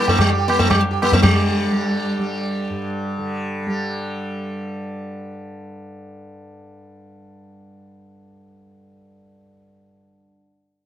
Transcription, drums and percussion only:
0.08 tabla tin medium
0.08 tabla ge medium
0.19 tabla na loud
0.19 tabla ge medium
0.50 tabla na medium
0.59 tabla tin loud
0.59 tabla ge medium
0.71 tabla na loud
0.71 tabla ge loud
1.02 tabla na loud
1.12 tabla tin medium
1.12 tabla ge medium
1.23 tabla na loud
1.23 tabla ge loud

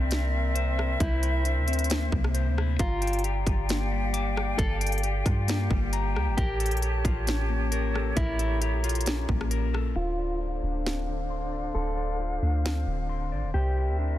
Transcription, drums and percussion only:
0.11 snare loud
0.11 closed hi-hat medium
0.56 closed hi-hat medium
0.79 cross-stick medium
1.00 kick loud
1.00 closed hi-hat medium
1.23 closed hi-hat medium
1.45 closed hi-hat medium
1.68 closed hi-hat medium
1.73 closed hi-hat medium
1.79 closed hi-hat medium
1.84 closed hi-hat medium
1.90 snare loud
1.90 closed hi-hat medium
2.12 kick medium
2.24 cross-stick loud
2.35 closed hi-hat medium
2.58 cross-stick medium
2.79 kick loud
2.79 closed hi-hat medium
3.02 closed hi-hat medium
3.07 closed hi-hat medium
3.13 closed hi-hat medium
3.19 closed hi-hat soft
3.24 closed hi-hat medium
3.47 kick loud
3.47 closed hi-hat medium
3.69 snare loud
3.69 closed hi-hat medium
4.14 closed hi-hat medium
4.37 cross-stick loud
4.59 kick loud
4.59 closed hi-hat medium
4.81 closed hi-hat medium
4.87 closed hi-hat medium
4.92 closed hi-hat medium
4.98 closed hi-hat soft
5.03 closed hi-hat medium
5.26 kick loud
5.26 cross-stick medium
5.26 closed hi-hat medium
5.48 snare loud
5.48 closed hi-hat medium
5.71 kick medium
5.93 closed hi-hat medium
6.16 cross-stick medium
6.38 kick loud
6.38 closed hi-hat medium
6.60 closed hi-hat medium
6.66 closed hi-hat medium
6.71 closed hi-hat medium
6.77 closed hi-hat soft
6.82 closed hi-hat medium
7.05 kick loud
7.05 closed hi-hat medium
7.27 snare loud
7.27 closed hi-hat medium
7.72 closed hi-hat medium
7.95 cross-stick medium
8.17 kick loud
8.17 closed hi-hat medium
8.39 closed hi-hat medium
8.62 closed hi-hat medium
8.84 closed hi-hat medium
8.89 closed hi-hat medium
8.95 closed hi-hat medium
9.01 closed hi-hat medium
9.06 snare loud
9.06 closed hi-hat medium
9.29 kick medium
9.41 cross-stick loud
9.51 closed hi-hat medium
9.75 cross-stick medium
10.86 snare loud
12.66 snare loud

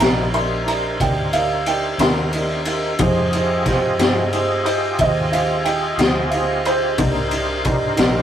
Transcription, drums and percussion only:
0.00 snare medium
0.00 ride medium
0.34 ride soft
0.68 ride medium
1.00 kick medium
1.00 ride medium
1.33 ride medium
1.66 ride medium
1.99 snare loud
1.99 ride medium
2.33 ride medium
2.65 ride medium
2.99 kick loud
2.99 ride medium
3.33 ride medium
3.66 kick medium
3.66 snare soft
3.66 ride medium
3.99 snare loud
3.99 ride medium
4.33 ride medium
4.66 ride medium
4.99 kick medium
4.99 ride medium
5.33 ride medium
5.65 ride medium
5.99 snare medium
5.99 ride medium
6.31 ride soft
6.65 ride medium
6.98 kick loud
6.98 ride medium
7.31 ride medium
7.65 kick medium
7.65 ride medium
7.97 snare loud
7.97 ride medium

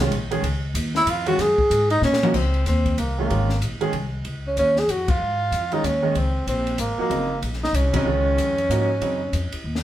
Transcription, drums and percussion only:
0.12 ride medium
0.31 ride medium
0.44 ride medium
0.75 hi-hat pedal medium
0.75 ride medium
0.95 snare medium
1.07 hi-hat pedal medium
1.07 ride medium
1.26 ride medium
1.39 snare soft
1.39 ride medium
1.58 kick medium
1.71 hi-hat pedal medium
1.71 ride medium
1.90 ride medium
2.02 snare medium
2.13 snare medium
2.23 mid tom medium
2.34 kick medium
2.34 crash medium
2.54 ride soft
2.66 snare soft
2.66 hi-hat pedal medium
2.66 ride medium
2.86 kick soft
2.86 ride soft
2.98 hi-hat pedal soft
2.98 ride medium
3.30 ride medium
3.49 snare soft
3.62 hi-hat pedal medium
3.62 ride medium
3.81 ride soft
3.93 ride medium
4.25 ride soft
4.57 hi-hat pedal medium
4.57 ride medium
4.76 snare soft
4.89 hi-hat pedal soft
4.89 ride medium
5.08 kick medium
5.08 ride medium
5.52 hi-hat pedal medium
5.52 ride medium
5.72 ride soft
5.84 hi-hat pedal medium
5.84 ride medium
6.15 ride medium
6.47 hi-hat pedal soft
6.47 ride medium
6.67 ride soft
6.78 hi-hat pedal medium
6.78 ride medium
7.11 ride medium
7.42 ride medium
7.53 snare soft
7.64 snare soft
7.74 hi-hat pedal medium
7.74 ride medium
7.94 kick medium
7.94 ride medium
8.38 hi-hat pedal soft
8.38 ride medium
8.58 ride soft
8.71 hi-hat pedal medium
8.71 ride medium
9.02 ride medium
9.33 hi-hat pedal medium
9.33 ride medium
9.52 ride medium
9.75 snare medium

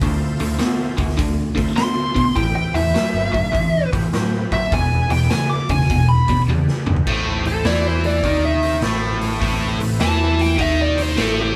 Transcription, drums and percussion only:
0.01 kick loud
0.01 open hi-hat medium
0.40 open hi-hat soft
0.59 snare loud
0.59 open hi-hat medium
0.98 kick medium
0.98 open hi-hat soft
1.09 snare soft
1.19 kick loud
1.19 open hi-hat medium
1.58 kick medium
1.58 open hi-hat medium
1.77 snare loud
1.77 open hi-hat medium
2.16 kick medium
2.16 open hi-hat medium
2.36 kick loud
2.36 open hi-hat medium
2.75 open hi-hat soft
2.95 snare loud
2.95 open hi-hat medium
3.34 kick medium
3.34 open hi-hat soft
3.55 kick loud
3.55 open hi-hat medium
3.93 kick medium
3.93 open hi-hat soft
4.13 snare loud
4.13 open hi-hat medium
4.52 kick medium
4.52 open hi-hat soft
4.72 kick loud
4.72 open hi-hat medium
5.10 open hi-hat soft
5.30 snare loud
5.30 open hi-hat medium
5.69 kick medium
5.69 open hi-hat soft
5.81 snare soft
5.90 kick loud
5.90 open hi-hat medium
6.28 kick medium
6.28 open hi-hat medium
6.48 high tom medium
6.68 snare medium
6.87 mid tom medium
6.96 floor tom medium
7.07 kick medium
7.07 crash medium
7.45 open hi-hat soft
7.65 snare loud
7.65 open hi-hat medium
8.04 open hi-hat medium
8.24 kick loud
8.24 open hi-hat medium
8.63 open hi-hat soft
8.82 snare loud
8.82 open hi-hat medium
9.21 open hi-hat medium
9.42 kick medium
9.42 open hi-hat medium
9.80 open hi-hat medium
10.00 snare loud
10.00 open hi-hat medium
10.39 open hi-hat medium
10.59 kick medium
10.59 open hi-hat medium
10.98 open hi-hat medium
11.18 snare loud
11.18 open hi-hat medium

